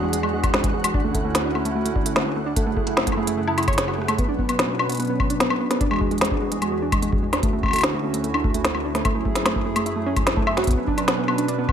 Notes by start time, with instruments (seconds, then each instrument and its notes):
Already playing: analog synth pad E2 E3 D4 F#4 G#4, synth texture F#5
0.03 synth arpeggio sound G#3
0.13 synth arpeggio sound G#3, closed hi-hat
0.23 synth arpeggio sound G#3, high woodblock
0.33 synth arpeggio sound G#3
0.44 synth arpeggio sound D4, kick, closed hi-hat, high woodblock
0.54 synth arpeggio sound G#3, snare
0.64 synth arpeggio sound G#3, kick, closed hi-hat
0.74 synth arpeggio sound G#3
0.84 synth arpeggio sound G#3, closed hi-hat, high woodblock
0.94 analog synth pad D2 D3 C#4 E4, synth arpeggio sound D4, kick
1.04 synth arpeggio sound A3
1.15 synth arpeggio sound A3, kick, closed hi-hat
1.25 synth arpeggio sound A3
1.35 synth arpeggio sound A3, snare, closed hi-hat
1.45 synth arpeggio sound D4
1.55 synth arpeggio sound A3, high woodblock
1.65 synth arpeggio sound A3, closed hi-hat
1.75 synth arpeggio sound A3
1.86 synth arpeggio sound A3, closed hi-hat
1.96 synth arpeggio sound D4, kick
2.06 synth arpeggio sound A3, closed hi-hat
2.16 synth arpeggio sound A3, snare
2.26 synth arpeggio sound A3
2.36 synth arpeggio sound A3
2.46 synth arpeggio sound D4
2.56 analog synth pad F#2 C#3 A3 E4 G#4, synth arpeggio sound A3, kick, closed hi-hat
2.67 synth arpeggio sound A3
2.77 synth arpeggio sound A3, kick
2.87 synth arpeggio sound A3, closed hi-hat
2.97 synth arpeggio sound E4, snare
3.07 synth arpeggio sound A3, kick, closed hi-hat
3.12 high woodblock
3.17 synth arpeggio sound A3
3.27 synth arpeggio sound A3, closed hi-hat
3.37 synth arpeggio sound A3
3.48 synth arpeggio sound E4, high woodblock
3.58 synth arpeggio sound E4, closed hi-hat, high woodblock
3.63 closed hi-hat
3.68 synth arpeggio sound C#5, kick, closed hi-hat, high woodblock
3.73 closed hi-hat
3.78 synth arpeggio sound C#5, cross-stick, snare, closed hi-hat
3.88 synth arpeggio sound F#4, cross-stick, high woodblock
3.95 synth arpeggio sound A3, cross-stick
4.02 cross-stick
4.08 synth arpeggio sound A3, closed hi-hat, high woodblock
4.18 analog synth pad B2 F#3 C#4 D4 B4, synth arpeggio sound B3, kick, closed hi-hat
4.29 synth arpeggio sound D4
4.39 synth arpeggio sound B3, kick
4.49 synth arpeggio sound B3, closed hi-hat, high woodblock
4.59 synth arpeggio sound B3, snare, closed hi-hat
4.69 synth arpeggio sound B3
4.79 synth arpeggio sound D4, high woodblock
4.89 synth arpeggio sound B3, closed hi-hat
4.92 closed hi-hat
4.95 closed hi-hat
4.97 synth arpeggio sound B3, closed hi-hat
5.00 closed hi-hat
5.02 closed hi-hat
5.05 closed hi-hat
5.07 synth arpeggio sound B3, closed hi-hat
5.20 synth arpeggio sound B3, kick, high woodblock
5.30 synth arpeggio sound D4, closed hi-hat
5.40 synth arpeggio sound B3, snare, closed hi-hat
5.50 synth arpeggio sound B3, high woodblock
5.60 synth arpeggio sound B3
5.71 synth arpeggio sound B3, snare, closed hi-hat
5.81 analog synth pad E2 E3 F#4 G#4, synth arpeggio sound D4, kick, closed hi-hat
5.91 synth arpeggio sound G#3, high woodblock
5.93 high woodblock
5.96 high woodblock
5.98 synth arpeggio sound G#3, kick, high woodblock
6.11 synth arpeggio sound G#3, closed hi-hat
6.18 synth arpeggio sound G#3, snare, closed hi-hat
6.21 closed hi-hat
6.25 closed hi-hat
6.31 synth arpeggio sound D4, kick
6.42 synth arpeggio sound G#3
6.52 synth arpeggio sound G#3, closed hi-hat
6.62 synth arpeggio sound G#3, closed hi-hat, high woodblock
6.72 synth arpeggio sound G#3
6.82 synth arpeggio sound D4
6.92 synth arpeggio sound G#3, kick, closed hi-hat, high woodblock
7.02 synth arpeggio sound G#3, closed hi-hat
7.13 synth arpeggio sound G#3, kick
7.23 synth arpeggio sound G#3
7.33 synth arpeggio sound D4, snare, closed hi-hat, high woodblock
7.43 analog synth pad D2 D3 C#4 E4 F#4, synth arpeggio sound A3, kick, closed hi-hat
7.53 synth arpeggio sound A3
7.63 synth arpeggio sound A3, kick, high woodblock
7.66 high woodblock
7.68 high woodblock
7.71 synth arpeggio sound A3, closed hi-hat, high woodblock
7.73 closed hi-hat, high woodblock
7.76 closed hi-hat, high woodblock
7.78 closed hi-hat, high woodblock
7.81 synth arpeggio sound D4, snare, closed hi-hat, high woodblock
7.94 synth arpeggio sound A3
8.04 synth arpeggio sound A3
8.14 synth arpeggio sound A3, closed hi-hat
8.24 synth arpeggio sound A3, closed hi-hat
8.34 synth arpeggio sound D4, high woodblock
8.44 synth arpeggio sound A3, kick
8.54 synth arpeggio sound A3, closed hi-hat
8.65 synth arpeggio sound A3, snare, closed hi-hat
8.75 synth arpeggio sound A3, high woodblock
8.85 synth arpeggio sound D4
8.95 synth arpeggio sound A3, snare, closed hi-hat
9.05 analog synth pad F#2 F#3 A3 G#4, synth arpeggio sound A3, kick, closed hi-hat, high woodblock
9.15 synth arpeggio sound A3
9.25 synth arpeggio sound A3, kick
9.35 synth arpeggio sound E4, snare, closed hi-hat
9.46 synth arpeggio sound A3, snare, closed hi-hat, high woodblock
9.56 synth arpeggio sound A3, kick
9.66 synth arpeggio sound A3
9.76 synth arpeggio sound A3, closed hi-hat, high woodblock
9.86 synth arpeggio sound E4, closed hi-hat
9.96 synth arpeggio sound A3
10.06 synth arpeggio sound C#4
10.17 synth arpeggio sound A3, kick, closed hi-hat, high woodblock
10.27 synth arpeggio sound E4, snare, closed hi-hat
10.37 synth arpeggio sound A3, kick
10.47 synth arpeggio sound E5, high woodblock
10.57 synth arpeggio sound F#4, snare, closed hi-hat
10.64 analog synth pad B2 C#4 D4 B4, synth arpeggio sound B3, kick, closed hi-hat
10.67 kick, closed hi-hat
10.71 kick, closed hi-hat
10.77 synth arpeggio sound B3
10.87 synth arpeggio sound D4, kick
10.98 synth arpeggio sound D4, closed hi-hat, high woodblock
11.08 synth arpeggio sound B3, snare, closed hi-hat
11.18 synth arpeggio sound B3
11.28 synth arpeggio sound B3, high woodblock
11.38 synth arpeggio sound D4, closed hi-hat
11.48 synth arpeggio sound D4, closed hi-hat
11.58 synth arpeggio sound B3
11.69 synth arpeggio sound B3, kick, high woodblock